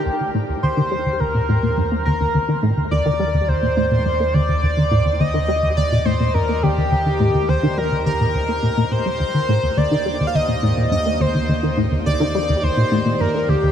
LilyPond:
<<
  \new Staff \with { instrumentName = "Synth texture" } { \time 4/4 \key ees \lydian \tempo 4 = 105 <ees' g''>1~ | <ees' g''>1~ | <ees' g''>1~ | <ees' g''>1 |
g''1~ | g''1 | }
  \new Staff \with { instrumentName = "Analog synth lead" } { \time 4/4 \key ees \lydian g'8 r8 c''4 bes'4. bes'8~ | bes'8 r8 d''4 c''4. d''8~ | d''4 ees''4 d''8 c''8 bes'8 g'8~ | g'4 c''8 bes'8 bes'4. c''8~ |
c''4 d''8.~ d''32 f''32 ees''4 ees''8 c''8~ | c''8 r8 d''4 c''4 bes'8 g'8 | }
  \new Staff \with { instrumentName = "Analog synth bass" } { \clef bass \time 4/4 \key ees \lydian ees,16 ees16 a,16 ees,16 ees,16 ees16 g16 ees,16 ees,16 bes,16 a,16 bes,16 g,16 bes16 ees,16 ees,16 | ees,16 ees16 a,16 ees,16 ees,16 ees16 g16 ees,16 ees,16 bes,16 a,16 bes,16 g,16 bes16 ees,16 ees,16 | ees,16 ees16 a,16 ees,16 ees,16 ees16 g16 ees,16 ees,16 bes,16 a,16 bes,16 g,16 bes16 ees,16 ees,16 | ees,16 ees16 a,16 ees,16 ees,16 ees16 g16 ees,16 ees,16 bes,16 ees,16 bes16 bes,16 bes,16 bes,16 g16 |
ees,16 ees16 a,16 ees,16 ees,16 ees16 g16 ees,16 ees,16 bes,16 a,16 bes,16 g,16 bes16 ees,16 ees,16 | ees,16 ees16 a,16 ees,16 ees,16 ees16 g16 ees,16 ees,16 bes,16 a,16 bes,16 g,16 bes16 ees,16 ees,16 | }
  \new Staff \with { instrumentName = "Synth drone" } { \clef bass \time 4/4 \key ees \lydian ees,1~ | ees,1~ | ees,1~ | ees,1 |
ees,1~ | ees,1 | }
>>